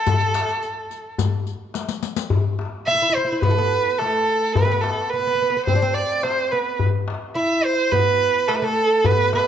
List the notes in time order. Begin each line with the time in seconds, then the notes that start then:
Already playing: A4
0.06 riq, darbuka dum
0.20 riq, darbuka ka
0.34 riq, darbuka tek
0.48 riq
0.62 riq
0.91 riq, darbuka ka
1.18 riq, darbuka dum
1.47 riq, darbuka ka
1.74 riq, darbuka tek
1.88 riq, darbuka ka
2.03 riq
2.16 riq, darbuka ka
2.30 darbuka dum
2.59 darbuka tek
2.73 darbuka ka
2.87 E4 E5, darbuka ka
2.95 E4
3.02 E4
3.10 E4
3.15 E4 C5, darbuka ka
3.25 E4
3.32 E4
3.42 B3 B4, darbuka dum
3.51 A3
3.58 B3
3.71 darbuka ka
3.99 A3 A4, darbuka tek
4.14 darbuka ka
4.53 B3 B4, darbuka dum
4.65 C4
4.72 B3
4.82 A4, darbuka tek
4.98 darbuka ka
5.10 B3 B4, darbuka ka
5.20 B3
5.27 B3
5.35 B3
5.40 B3, darbuka ka
5.50 B3
5.57 B3
5.66 C4 C5, darbuka dum
5.75 D4
5.82 C4
5.94 D5, darbuka ka
6.23 C4 C5, darbuka tek
6.38 darbuka ka
6.52 B3 B4
6.79 darbuka dum
7.08 darbuka tek
7.22 darbuka ka
7.35 E4 E5, darbuka ka
7.64 C5, darbuka ka
7.92 B3 B4, darbuka dum
8.21 darbuka ka
8.48 A3 A4, darbuka tek
8.56 B4
8.62 A3 A4, darbuka ka
9.05 B3 B4, darbuka dum
9.33 B3 B4, darbuka tek